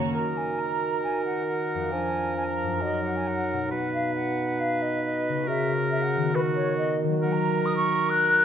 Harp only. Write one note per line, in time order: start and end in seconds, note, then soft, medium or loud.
0.00 0.16 F#2 soft
0.00 0.16 C#3 soft
0.00 1.85 D#3 soft
0.00 0.16 C#4 soft
0.00 1.88 F#4 soft
0.00 0.16 C#5 soft
0.05 1.82 A#4 soft
0.10 1.92 D#5 soft
1.74 2.74 F2 soft
1.79 2.76 F4 soft
1.83 2.76 A#4 soft
1.88 2.81 D5 soft
2.63 3.64 F#2 soft
2.68 3.56 D#4 soft
2.72 3.61 F#4 soft
2.77 3.71 A#4 soft
3.53 5.40 B2 soft
3.57 5.42 D#4 soft
3.62 5.37 F#4 soft
3.67 5.46 B4 soft
5.29 6.27 C#3 soft
5.34 6.29 C#4 soft
5.38 6.24 F#4 soft
5.43 6.34 A#4 soft
6.16 7.03 D#3 soft
6.21 7.17 B3 soft
6.25 7.12 F#4 soft
7.04 8.45 D#3 soft
7.08 8.45 F#3 soft
7.13 8.45 F#4 soft
7.17 8.45 A#4 soft